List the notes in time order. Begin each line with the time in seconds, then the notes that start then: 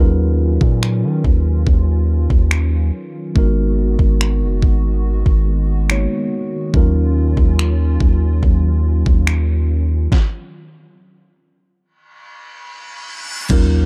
Already playing: D#2 D#3 F#3 C#4 F4 G#4 B4
0.00 D#4 F4 A#4
0.61 A#2, kick
0.83 finger snap
1.04 D#3
1.24 D#2, kick
1.67 D#2, kick
2.30 D#2, kick
2.51 finger snap
3.35 G#1 D#3 G#3 B3 D#4 F#4 A#4, kick
3.99 G#1, kick
4.21 finger snap
4.42 F#1
4.62 G#1, kick
5.26 G#1, kick
5.90 G#3 A#3 D#4 F#4 C#5, finger snap
5.97 B3
6.73 D#2 F#3 C#4 D#4 F4 A#4, kick
7.37 D#2, kick
7.59 finger snap
8.00 D#2, kick
8.43 D#2, kick
9.06 D#2, kick
9.27 finger snap
10.12 kick, snare
11.81 reverse cymbal
13.49 D#2 D#3 F#3 C#4 D#4 F4 A#4, kick, closed hi-hat, crash, impact